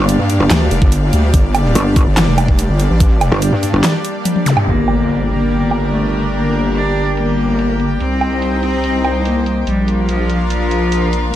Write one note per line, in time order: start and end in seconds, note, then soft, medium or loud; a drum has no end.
0.00 0.18 G1 loud
0.00 4.63 G3 medium
0.00 4.67 A#3 medium
0.00 4.63 D4 medium
0.00 4.63 G4 medium
0.00 4.65 D5 medium
0.00 5.76 F5 medium
0.09 closed hi-hat medium
0.19 0.38 G2 loud
0.30 closed hi-hat medium
0.40 0.49 G1 loud
0.50 0.70 D2 loud
0.50 snare loud
0.50 clap medium
0.50 closed hi-hat medium
0.71 0.80 F1 loud
0.71 closed hi-hat medium
0.82 1.11 G1 loud
0.82 kick loud
0.92 closed hi-hat medium
1.13 1.32 D2 loud
1.13 closed hi-hat medium
1.34 1.74 G1 medium
1.34 kick loud
1.34 closed hi-hat medium
1.55 closed hi-hat medium
1.55 low woodblock medium
1.75 2.05 G1 loud
1.75 closed hi-hat medium
1.96 kick loud
1.96 closed hi-hat medium
2.07 2.26 G1 loud
2.17 snare loud
2.17 clap medium
2.17 closed hi-hat medium
2.28 2.68 F1 medium
2.38 closed hi-hat medium
2.38 low woodblock medium
2.48 kick medium
2.59 closed hi-hat medium
2.69 2.88 G1 medium
2.80 closed hi-hat medium
2.90 3.30 A1 loud
3.00 kick loud
3.00 closed hi-hat medium
3.21 closed hi-hat medium
3.21 low woodblock medium
3.32 3.51 G1 loud
3.42 closed hi-hat medium
3.53 3.72 G2 loud
3.63 closed hi-hat medium
3.73 3.82 G1 loud
3.84 snare loud
3.84 clap medium
3.84 closed hi-hat medium
4.05 closed hi-hat medium
4.25 closed hi-hat medium
4.25 high tom medium
4.36 high tom medium
4.46 closed hi-hat medium
4.46 mid tom medium
4.46 zap medium
4.57 mid tom medium
4.57 low woodblock medium
4.67 7.98 G1 medium
4.67 7.97 G3 medium
4.67 5.21 A#3 loud
4.67 8.00 D4 medium
4.67 7.97 G4 medium
4.67 7.97 A#4 medium
4.67 7.97 D5 medium
4.67 impact medium
4.76 10.34 G4 medium
4.88 8.67 A#4 medium
4.88 closed hi-hat soft
4.88 low woodblock medium
5.09 closed hi-hat medium
5.30 5.84 A#3 medium
5.30 closed hi-hat soft
5.36 10.34 G5 medium
5.50 closed hi-hat medium
5.71 closed hi-hat soft
5.71 low woodblock soft
5.92 6.20 A3 medium
5.92 closed hi-hat medium
6.13 closed hi-hat medium
6.34 6.62 A#3 medium
6.34 closed hi-hat medium
6.55 closed hi-hat soft
6.75 7.03 D4 medium
6.75 closed hi-hat medium
6.96 closed hi-hat soft
7.17 7.92 A#3 medium
7.17 closed hi-hat medium
7.38 closed hi-hat soft
7.59 closed hi-hat medium
7.80 closed hi-hat soft
8.00 9.65 C2 medium
8.00 8.55 C4 loud
8.00 9.65 C4 medium
8.00 9.67 D#4 medium
8.00 9.65 C5 medium
8.00 9.65 D#5 medium
8.00 9.65 G5 medium
8.00 closed hi-hat medium
8.21 closed hi-hat soft
8.21 low woodblock medium
8.42 closed hi-hat medium
8.46 10.21 C5 medium
8.63 9.17 C4 loud
8.63 closed hi-hat soft
8.84 closed hi-hat medium
9.05 closed hi-hat soft
9.05 low woodblock soft
9.25 9.53 A#3 medium
9.25 closed hi-hat medium
9.46 closed hi-hat soft
9.67 11.32 A#1 medium
9.67 9.95 G3 medium
9.67 11.32 A#3 medium
9.67 11.36 D4 medium
9.67 11.36 A#4 medium
9.67 11.36 D5 medium
9.67 11.32 F5 medium
9.67 closed hi-hat medium
9.78 11.36 F4 medium
9.83 11.36 A#4 medium
9.88 closed hi-hat soft
10.09 10.37 F3 medium
10.09 closed hi-hat medium
10.30 closed hi-hat soft
10.36 11.36 F5 medium
10.50 11.26 F3 loud
10.50 closed hi-hat medium
10.71 closed hi-hat soft
10.92 closed hi-hat medium
11.13 closed hi-hat soft